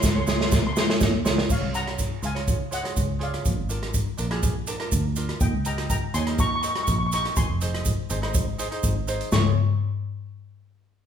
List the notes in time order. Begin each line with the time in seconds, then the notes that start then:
0.03 C#2 C6, kick, snare, shaker
0.12 F4 G#4 C#5 C6
0.20 C6
0.26 C#2 F4 G#4 C#5 C6, snare, shaker
0.36 C6
0.41 C6, snare
0.52 C6, kick, snare, shaker
0.60 C6
0.67 C6
0.73 F4 G#4 C6, shaker
0.77 C#5 C6, snare
0.89 F4 G#4 C#5, snare
1.01 D#2, kick, snare, shaker
1.25 C#2 F4 G#4 C#5, snare, shaker
1.38 snare
1.50 C#2 C#5 F5, kick, crash, shaker
1.63 C2
1.73 F4 G#4 C#5 F#5 A#5, closed hi-hat, shaker
1.87 cross-stick, closed hi-hat
1.98 kick, closed hi-hat, shaker
2.22 C#2 F4 G#4 A#4 F5 G#5, closed hi-hat, shaker
2.34 F4 G#4 C#5, cross-stick, closed hi-hat
2.48 kick, closed hi-hat, shaker
2.71 F4 G#4 C#5 D#5 F#5, closed hi-hat, shaker
2.83 F4 G#4 C#5, cross-stick, closed hi-hat
2.97 C#2, kick, closed hi-hat, shaker
3.19 F4 G#4 C#5 D5, closed hi-hat
3.23 F5
3.34 cross-stick, closed hi-hat
3.45 A#1, kick, closed hi-hat, shaker
3.58 G#1
3.69 D4 F4 A#4, closed hi-hat, shaker
3.83 cross-stick, closed hi-hat
3.94 kick, closed hi-hat, shaker
4.17 A#1 D4 F4 A#4, closed hi-hat, shaker
4.31 D4 F4 G#4, cross-stick, closed hi-hat
4.43 kick, closed hi-hat, shaker
4.67 D4 F4 A#4, closed hi-hat, shaker
4.80 D4 F4 A#4, cross-stick, closed hi-hat
4.92 D2, kick, closed hi-hat, shaker
5.16 D4 F4 A#4, closed hi-hat, shaker
5.29 cross-stick, closed hi-hat
5.40 D#2 D#5 G5, kick, closed hi-hat, shaker
5.53 C#2
5.65 D#4 G4 A#4 G5 A#5, closed hi-hat, shaker
5.78 cross-stick, closed hi-hat
5.90 G5 A#5, kick, closed hi-hat, shaker
6.14 D#2 D#4 G4 C#5 G#5 C6, closed hi-hat, shaker
6.27 D#4 G4 A#4, cross-stick, closed hi-hat
6.38 A#5 C#6, kick, closed hi-hat, shaker
6.47 C#6
6.56 C#6
6.62 D#4 G4 A#4 C#6, closed hi-hat, shaker
6.69 C#6
6.75 D#4 G4 A#4 C#6, cross-stick, closed hi-hat
6.83 C#6
6.87 A#1, kick, closed hi-hat, shaker
6.92 C#6
6.99 C#6
7.07 C#6
7.12 D#4 G4 A#4 C#6, closed hi-hat, shaker
7.23 C#6, cross-stick, closed hi-hat
7.36 G#1 G#5 C6, kick, closed hi-hat, shaker
7.49 F1
7.61 D#4 G#4 C5, closed hi-hat, shaker
7.74 cross-stick, closed hi-hat
7.85 kick, closed hi-hat, shaker
8.09 G#1 D#4 G#4 C5, closed hi-hat, shaker
8.22 D#4 G#4 C5, cross-stick, closed hi-hat
8.34 kick, closed hi-hat, shaker
8.58 D#4 G#4 C5, closed hi-hat, shaker
8.71 D#4 G#4 C5, closed hi-hat
8.83 G#1, kick, closed hi-hat, shaker
9.07 D#4 G#4 C5, closed hi-hat, shaker
9.21 closed hi-hat
9.32 C#2 F4 G#4 C#5 C#6, snare, floor tom, shaker